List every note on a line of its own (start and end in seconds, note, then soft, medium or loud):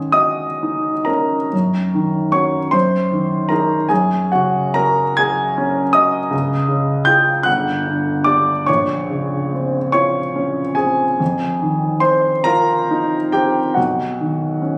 0.00 1.48 G#2 soft
0.00 1.55 D#3 soft
0.00 0.44 C#4 soft
0.00 0.11 G#4 soft
0.00 0.15 G#5 medium
0.12 0.91 F#4 soft
0.12 1.04 D#5 soft
0.12 1.07 D#6 medium
0.63 1.36 D#4 soft
1.05 1.52 C#4 soft
1.05 2.29 A#4 soft
1.05 2.32 A#5 medium
1.53 2.70 F#2 soft
1.94 2.58 D#3 soft
2.32 2.70 C#4 soft
2.32 2.70 F#4 soft
2.32 2.70 C#5 soft
2.32 2.73 C#6 medium
2.71 3.86 F#2 soft
2.71 3.46 C5 medium
2.71 3.50 C6 medium
3.12 3.74 D#3 soft
3.49 3.86 D#4 soft
3.49 3.86 G#4 soft
3.49 3.87 A#4 soft
3.49 3.89 A#5 medium
3.89 6.29 F#2 soft
3.89 4.28 G#4 medium
3.89 4.31 G#5 medium
4.32 5.03 C#3 soft
4.32 4.74 F#4 soft
4.32 4.76 F#5 medium
4.74 5.43 F#4 soft
4.74 5.16 A#4 medium
4.74 5.18 A#5 medium
5.17 5.81 G#4 soft
5.17 5.91 G#5 medium
5.17 5.94 G#6 medium
5.58 6.17 C#4 soft
5.93 6.33 F#4 soft
5.93 7.04 D#5 medium
5.93 7.07 D#6 medium
6.31 7.42 C#2 soft
6.68 7.30 C#3 soft
7.05 7.42 F4 soft
7.05 7.42 G#4 soft
7.05 7.43 G5 medium
7.05 7.45 G6 medium
7.43 8.64 G1 medium
7.43 8.22 F#5 medium
7.43 8.25 F#6 medium
7.87 8.51 D3 soft
8.24 8.64 D4 soft
8.24 8.64 G4 soft
8.24 8.64 D5 medium
8.24 8.67 D6 medium
8.66 11.17 A#1 soft
8.66 9.89 C#5 medium
8.66 9.91 C#6 medium
9.10 9.77 C#3 soft
9.54 10.20 C4 soft
9.92 10.61 F4 soft
9.92 10.74 C#5 medium
9.92 10.77 C#6 medium
10.36 11.04 C#4 soft
10.75 11.20 C4 soft
10.75 11.99 G#4 soft
10.75 12.02 G#5 medium
11.20 13.73 F2 soft
11.62 12.30 D#3 soft
12.00 12.73 C4 soft
12.00 12.43 C5 medium
12.00 12.46 C6 medium
12.44 13.16 F4 soft
12.44 13.29 A#4 medium
12.44 13.32 A#5 medium
12.91 13.59 D#4 soft
13.32 13.77 C4 soft
13.32 13.73 G4 medium
13.32 13.76 G5 medium
13.74 14.78 B1 soft
13.74 14.78 F#4 soft
13.74 14.78 F#5 soft
14.20 14.78 D#3 soft
14.62 14.78 C#4 soft